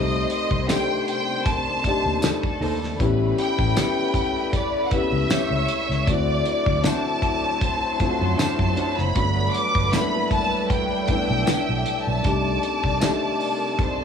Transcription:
Already playing: fingered electric bass C2, string section C3 D#3 G3 A3, grand piano A3 C4 D#4 G4, violin section C5 D#5 C6
0.30 violin section D#5, closed hi-hat
0.51 fingered electric bass C2, kick
0.67 grand piano A3 D4 D#4 G4, clean electric guitar D#4 A4 C5, violin section G5, snare, closed hi-hat, tambourine
1.08 violin section G5, closed hi-hat
1.46 violin section A5, kick, closed hi-hat
1.84 grand piano A3 D4 D#4 G4, muted fingered electric bass stroke, kick, closed hi-hat
2.05 fingered electric bass D#2
2.22 clean electric guitar D#4 A4 C5, violin section A4 A5, snare, closed hi-hat, tambourine
2.43 muted fingered electric bass stroke, kick
2.60 fingered electric bass D#2, clean electric guitar D#4 A4 C5, open hi-hat
2.84 snare
2.99 fingered electric bass A1, string section C#3, grand piano B3 C#4 E4 G4, violin section B4 B5, kick, closed hi-hat
3.38 violin section G5, closed hi-hat
3.59 fingered electric bass A1, kick
3.75 grand piano B3 C#4 E4 G4, clean electric guitar E4 G4 C#5, snare, closed hi-hat, tambourine
4.14 kick, closed hi-hat
4.53 violin section D5, kick, closed hi-hat
4.85 violin section F#5
4.91 grand piano B3 C#4 E4 G4, violin section E5, muted fingered electric bass stroke, kick, closed hi-hat
5.12 fingered electric bass C#2
5.30 clean electric guitar E4 G4 C#5, violin section C#5 C#6, snare, closed hi-hat, tambourine
5.50 fingered electric bass C#2
5.68 closed hi-hat
5.89 fingered electric bass C#2, snare
6.07 fingered electric bass D2, string section D3 F#3 C4 E4, grand piano A3 C4 E4 F#4, violin section D5 D6, kick, closed hi-hat
6.45 closed hi-hat
6.66 fingered electric bass D2, kick
6.84 grand piano A3 C4 E4 F#4, clean electric guitar D4 F#4 C5, violin section A5, snare, closed hi-hat, tambourine
7.22 kick, closed hi-hat
7.61 violin section C5 C6, kick, closed hi-hat
7.99 grand piano A3 C4 E4 F4, muted fingered electric bass stroke, kick, closed hi-hat
8.08 grand piano F#4
8.21 fingered electric bass F#2
8.38 clean electric guitar D4 F#4 C5, violin section A5, snare, closed hi-hat, tambourine
8.59 fingered electric bass F#2, kick
8.77 clean electric guitar D4 F#4 C5, closed hi-hat
8.97 fingered electric bass F#1, violin section B5, snare
9.14 fingered electric bass G1, string section G3 A4 B4 D5, grand piano A3 B3 D4 F#4, violin section B4 B5, kick, closed hi-hat
9.54 violin section D6, closed hi-hat
9.75 fingered electric bass G1, kick
9.92 grand piano A3 A#3 D4 E4, clean electric guitar D4 F#4 B4, violin section B5, snare, closed hi-hat, tambourine
10.00 grand piano B3
10.31 violin section A5, kick, closed hi-hat
10.70 violin section G5, kick, closed hi-hat
11.07 grand piano A3 B3 D4 E4, violin section E5 E6, muted fingered electric bass stroke, kick, closed hi-hat
11.30 fingered electric bass B1
11.46 clean electric guitar D4 F#4 B4, snare, closed hi-hat, tambourine
11.69 fingered electric bass B1
11.86 closed hi-hat
12.07 fingered electric bass B1, violin section A5
12.23 fingered electric bass C2, string section C3 D#3 G3 A3, grand piano A3 D4 D#4 G4, violin section D5 D6, kick, closed hi-hat
12.63 closed hi-hat
12.83 fingered electric bass C2, kick
13.00 grand piano A3 D4 D#4 G4, clean electric guitar D#4 A4 C5, snare, closed hi-hat, tambourine
13.40 open hi-hat
13.79 violin section C5 C6, kick, closed hi-hat

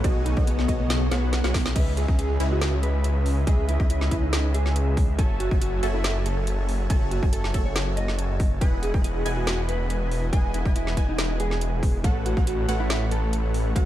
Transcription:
Already playing: ambient pad C#3 A3
0.04 detuned saw bass B1, ambient pad F#3 D#4, supersaw synth B3 F#4 G#4 A4 C#5 D#5, clean electric guitar F#4, synth pluck D#5, kick, closed hi-hat
0.26 clean electric guitar D#4, closed hi-hat
0.37 detuned saw bass B1, supersaw synth B3 F#4 G#4 A4 C#5 D#5, synth pluck D#5, kick
0.47 clean electric guitar B3, closed hi-hat
0.59 snare
0.68 detuned saw bass B1, supersaw synth B3 F#4 G#4 A4 C#5 D#5, synth pluck D#5, kick, closed hi-hat
0.80 clean electric guitar B3
0.90 snare, closed hi-hat
1.11 detuned saw bass B1, supersaw synth B3 F#4 G#4 A4 C#5 F#5, clean electric guitar B3, synth pluck F#5, snare, closed hi-hat
1.33 snare, closed hi-hat
1.44 detuned saw bass B1, supersaw synth B3 F#4 G#4 A4 C#5 F#5, synth pluck F#5, snare
1.54 kick, snare, open hi-hat
1.66 snare
1.76 detuned saw bass C#2, supersaw synth C#4 G#4 B4 D#5 E5, clean electric guitar B4, synth pluck E5, kick, closed hi-hat, crash
1.97 clean electric guitar G#4, closed hi-hat
2.08 detuned saw bass C#2, supersaw synth C#4 G#4 B4 D#5 E5, synth pluck E5, kick
2.19 clean electric guitar G#4, closed hi-hat
2.40 detuned saw bass C#2, supersaw synth C#4 G#4 B4 D#5 E5, synth pluck E4, closed hi-hat
2.52 clean electric guitar F#4
2.62 snare, closed hi-hat
2.83 clean electric guitar B4, closed hi-hat
3.04 closed hi-hat
3.26 open hi-hat
3.47 detuned saw bass C#2, supersaw synth C#4 G#4 B4 D#5 E5, clean electric guitar G#4, synth pluck E5, kick, closed hi-hat
3.69 clean electric guitar E4, closed hi-hat
3.80 detuned saw bass C#2, supersaw synth C#4 G#4 B4 D#5 E5, synth pluck E5, kick
3.90 clean electric guitar E4, closed hi-hat
4.01 snare
4.11 detuned saw bass C#2, supersaw synth C#4 G#4 B4 D#5 E5, synth pluck E4, kick, closed hi-hat
4.23 clean electric guitar D#4
4.33 snare, closed hi-hat
4.54 clean electric guitar G#4, closed hi-hat
4.66 snare
4.76 closed hi-hat
4.97 kick, open hi-hat
5.19 detuned saw bass F#1, supersaw synth F#4 C#5 E5 G#5 A5, clean electric guitar A4, synth pluck A5, kick, closed hi-hat
5.40 clean electric guitar F#4, closed hi-hat
5.51 detuned saw bass F#1, supersaw synth F#4 C#5 E5 G#5 A5, synth pluck A5, kick
5.61 clean electric guitar F#4, closed hi-hat
5.83 detuned saw bass F#1, supersaw synth F#4 C#5 E5 G#5 A5, synth pluck A4, closed hi-hat
5.94 clean electric guitar E4
6.04 snare, closed hi-hat
6.26 clean electric guitar A4, closed hi-hat
6.47 closed hi-hat
6.69 open hi-hat
6.90 detuned saw bass F#1, supersaw synth F#4 C#5 E5 G#5 A5, clean electric guitar A4, synth pluck A5, kick, closed hi-hat
7.11 clean electric guitar F#4, closed hi-hat
7.23 detuned saw bass F#1, supersaw synth F#4 C#5 E5 G#5 A5, synth pluck A5, kick
7.33 clean electric guitar A4, closed hi-hat
7.44 snare
7.54 detuned saw bass F#1, supersaw synth F#4 C#5 E5 G#5 A5, synth pluck A4, kick, closed hi-hat
7.66 clean electric guitar C#5
7.76 snare, closed hi-hat
7.97 clean electric guitar D#5, closed hi-hat
8.08 snare
8.19 closed hi-hat
8.40 kick, open hi-hat
8.61 detuned saw bass E1, supersaw synth E4 B4 D#5 F#5 G#5, clean electric guitar B4, synth pluck G#5, kick, closed hi-hat
8.83 clean electric guitar G#4, closed hi-hat
8.94 detuned saw bass E1, supersaw synth E4 B4 D#5 F#5 G#5, synth pluck G#5, kick
9.04 clean electric guitar G#4, closed hi-hat
9.25 detuned saw bass E1, supersaw synth E4 B4 D#5 F#5 G#5, synth pluck G#5, closed hi-hat
9.37 clean electric guitar F#4
9.47 snare, closed hi-hat
9.69 clean electric guitar B4, closed hi-hat
9.90 closed hi-hat
10.12 open hi-hat
10.33 detuned saw bass E1, supersaw synth E4 B4 D#5 F#5 G#5, clean electric guitar G#4, synth pluck G#5, kick, closed hi-hat
10.54 clean electric guitar E4, closed hi-hat
10.65 detuned saw bass E1, supersaw synth E4 B4 D#5 F#5 G#5, synth pluck G#5, kick
10.76 clean electric guitar E4, closed hi-hat
10.87 snare
10.97 detuned saw bass E1, supersaw synth E4 B4 D#5 F#5 G#5, synth pluck G#5, kick, closed hi-hat
11.09 clean electric guitar D#4
11.19 snare, closed hi-hat
11.40 clean electric guitar G#4, closed hi-hat
11.51 snare
11.61 closed hi-hat
11.83 kick, open hi-hat
12.04 detuned saw bass A1, supersaw synth A3 A4 B4 C#5 F#5, clean electric guitar A4, synth pluck F#5, kick, closed hi-hat
12.26 clean electric guitar F#4, closed hi-hat
12.37 detuned saw bass A1, supersaw synth A3 A4 B4 C#5 F#5, synth pluck F#5, kick
12.47 clean electric guitar F#4, closed hi-hat
12.68 detuned saw bass A1, supersaw synth A3 A4 B4 C#5 F#5, synth pluck F#5, closed hi-hat
12.80 clean electric guitar E4
12.90 snare, closed hi-hat
13.11 clean electric guitar A4, closed hi-hat
13.33 closed hi-hat
13.54 open hi-hat
13.76 detuned saw bass A1, supersaw synth A3 A4 B4 C#5 F#5, clean electric guitar F#4, synth pluck F#5, kick, closed hi-hat

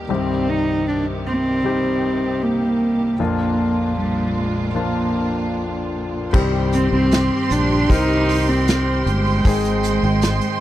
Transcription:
Already playing: grand piano G3 A#3 D#4 G4, string section G4
0.09 grand piano C2 G2 D#3 G3 C4 G4, string section C3 D#3 C4, cello C4
0.49 cello D#4
0.88 cello D4
1.27 cello C4
1.64 grand piano G3 C4 D#4 G4
2.43 cello A#3
3.19 grand piano A#1 F2 F3 A#3 D4 F4, string section A#2 A#3 D4 F4, cello A#3
3.98 cello G3
4.38 cello G#3
4.75 grand piano F3 A#3 D4 F4, cello A#3
6.33 fretless electric bass C2, grand piano G2 D#3 G3 C4 G4, string section G4 C5 G5 C6, kick, crash
6.72 cello C4, hi-hat pedal, open hi-hat
6.93 fretless electric bass C2, cello C4
7.11 snare, hi-hat pedal, open hi-hat
7.50 fretless electric bass A#1, cello D4, hi-hat pedal, open hi-hat
7.89 fretless electric bass C2, grand piano C4 D#4 G4 A#4, cello D#4, kick, hi-hat pedal, open hi-hat
8.29 hi-hat pedal, open hi-hat
8.49 cello C4
8.68 snare, hi-hat pedal, open hi-hat
9.06 fretless electric bass G1, cello G#3, hi-hat pedal, open hi-hat
9.26 open hi-hat
9.45 fretless electric bass G#1, grand piano G#2 D#3 G#3 C4 D#4 G#4, string section G#3 C6, kick, hi-hat pedal, open hi-hat
9.64 hi-hat pedal
9.83 hi-hat pedal, open hi-hat
10.03 fretless electric bass G#1, open hi-hat
10.22 snare, hi-hat pedal, open hi-hat
10.41 hi-hat pedal

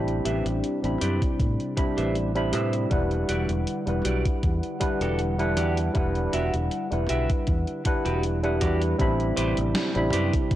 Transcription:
Already playing: fingered electric bass A1, ambient pad C3 D4 G4, tine electric piano G3 C4 D4 E4 B5
0.08 closed hi-hat
0.25 fingered electric bass A1, clean electric guitar G4 B4 C5 E5, closed hi-hat
0.46 fingered electric bass A1, closed hi-hat
0.64 closed hi-hat
0.82 fingered electric bass A1, tine electric piano G3 C4 D4 E4 B5, closed hi-hat
1.01 fingered electric bass F#2, clean electric guitar G4 B4 C5 D5, closed hi-hat
1.22 kick, closed hi-hat
1.40 fingered electric bass A2, kick, closed hi-hat
1.60 closed hi-hat
1.76 tine electric piano G3 C4 D4 E4 B5, muted clean electric guitar stroke, kick, closed hi-hat
1.97 fingered electric bass A1, clean electric guitar G4 B4 C5 E5, closed hi-hat
2.15 closed hi-hat
2.35 tine electric piano G3 C4 D4 E4 B5, closed hi-hat
2.52 fingered electric bass A2, clean electric guitar G4 B4 C5 E5, closed hi-hat
2.73 closed hi-hat
2.90 fingered electric bass E1, ambient pad D3 G3 F#5, tine electric piano G3 D4 E4 B4 F#5, kick, closed hi-hat
3.11 closed hi-hat
3.29 fingered electric bass E1, clean electric guitar F#4 G4 D5, closed hi-hat
3.49 fingered electric bass E1, closed hi-hat
3.67 closed hi-hat
3.86 fingered electric bass E1, tine electric piano G3 D4 E4 B4 F#5, closed hi-hat
4.05 fingered electric bass B1, clean electric guitar F#4 G4 D5, closed hi-hat
4.26 kick, closed hi-hat
4.43 fingered electric bass E2, kick, closed hi-hat
4.63 closed hi-hat
4.80 tine electric piano G3 D4 E4 B4 F#5, muted clean electric guitar stroke, kick, closed hi-hat
5.01 fingered electric bass E1, clean electric guitar F#4 G4 A4, closed hi-hat
5.19 closed hi-hat
5.38 tine electric piano G3 D4 E4 B4 F#5, closed hi-hat
5.57 fingered electric bass E2, clean electric guitar F#4 G4 D5, closed hi-hat
5.77 closed hi-hat
5.94 fingered electric bass E1, tine electric piano G3 D4 E4 B4 F#5, kick, closed hi-hat
6.15 closed hi-hat
6.33 fingered electric bass E1, clean electric guitar F#4 G4 E5, closed hi-hat
6.54 fingered electric bass E1, closed hi-hat
6.71 closed hi-hat
6.90 fingered electric bass E1, tine electric piano G3 D4 E4 B4 F#5, closed hi-hat
7.09 fingered electric bass B1, clean electric guitar F#4 G4 E5, closed hi-hat
7.30 kick, closed hi-hat
7.47 fingered electric bass E2, kick, closed hi-hat
7.67 closed hi-hat
7.85 tine electric piano G3 D4 E4 B4 F#5, muted clean electric guitar stroke, kick, closed hi-hat
8.05 fingered electric bass E1, clean electric guitar F#4 G4 B4, closed hi-hat
8.23 closed hi-hat
8.43 tine electric piano G3 D4 E4 B4 F#5, closed hi-hat
8.61 fingered electric bass E2, clean electric guitar F#4 G4 D5, kick, closed hi-hat
8.82 closed hi-hat
8.98 fingered electric bass A1, ambient pad C3 D4 G4, tine electric piano G3 C4 D4 E4 B5, kick, closed hi-hat
9.20 closed hi-hat
9.37 fingered electric bass A1, clean electric guitar G4 B4 C5 D5, closed hi-hat
9.57 fingered electric bass A1, closed hi-hat
9.75 snare, closed hi-hat
9.95 fingered electric bass A1, tine electric piano G3 C4 D4 E4 B5, closed hi-hat
10.12 fingered electric bass F#2, clean electric guitar G4 B4 C5 D5, closed hi-hat
10.33 kick, closed hi-hat
10.51 kick, closed hi-hat

